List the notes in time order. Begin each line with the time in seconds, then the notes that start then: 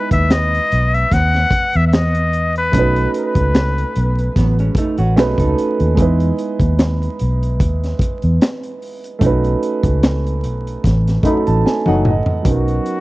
Already playing: G#3 B3 D#4 E4 B4
0.11 D#2 E5, kick, closed hi-hat
0.30 D#5, finger snap, snare, closed hi-hat
0.54 closed hi-hat
0.72 B1, closed hi-hat
0.94 E5, closed hi-hat
1.11 D#2 F#5, kick, snare, closed hi-hat
1.34 snare, closed hi-hat
1.51 kick, closed hi-hat
1.73 E2 E5, closed hi-hat
1.88 E5
1.93 D#5, finger snap, snare, closed hi-hat
2.15 closed hi-hat
2.33 closed hi-hat
2.56 B4, closed hi-hat
2.72 B1 A3 C#4, kick, closed hi-hat
2.76 D#4 F#4 B4
2.96 closed hi-hat
3.14 closed hi-hat
3.18 B4
3.35 C#2, kick, closed hi-hat
3.55 finger snap, snare, closed hi-hat
3.78 closed hi-hat
3.96 B1, closed hi-hat
4.18 closed hi-hat
4.36 A1 F#3 B3, kick, snare, closed hi-hat
4.59 G#3 C#4, closed hi-hat
4.75 A3 D#4, kick, closed hi-hat
4.98 A1 C#4 F#4, closed hi-hat
5.16 B1 A3 C#4 D#4 F#4 G#4 B4, finger snap, snare, closed hi-hat
5.38 C#2 D#4 A4, kick, closed hi-hat
5.58 closed hi-hat
5.80 D#2, closed hi-hat
5.95 E2 G#3 B3 D#4, kick, closed hi-hat
6.00 E4 B4
6.20 closed hi-hat
6.38 closed hi-hat
6.60 D#2, kick, closed hi-hat
6.79 finger snap, snare, closed hi-hat
7.03 closed hi-hat
7.19 B1, closed hi-hat
7.43 closed hi-hat
7.60 D#2, kick, closed hi-hat
7.83 snare, closed hi-hat
7.99 kick, closed hi-hat
8.22 E2, closed hi-hat
8.41 finger snap, snare, closed hi-hat
8.63 closed hi-hat
8.82 open hi-hat
9.04 closed hi-hat
9.19 B1 A3 C#4 D#4, kick, closed hi-hat
9.24 F#4 B4
9.44 closed hi-hat
9.63 closed hi-hat
9.83 C#2, kick, closed hi-hat
10.03 finger snap, snare, closed hi-hat
10.26 closed hi-hat
10.44 B1, closed hi-hat
10.67 closed hi-hat
10.84 A1, kick, snare, closed hi-hat
11.07 snare, closed hi-hat
11.23 A2 F#3 A3 C#4 D#4 F#4 A4 B5, kick, closed hi-hat
11.47 A1 A5, closed hi-hat
11.66 G#5, snare
11.86 F#1 A2 F#3 D#4 F#5, high tom
12.05 D#5, mid tom
12.26 floor tom
12.43 B1 F#3 B3 C#4, kick, closed hi-hat
12.48 D#4 F#4 A#4
12.68 closed hi-hat
12.86 closed hi-hat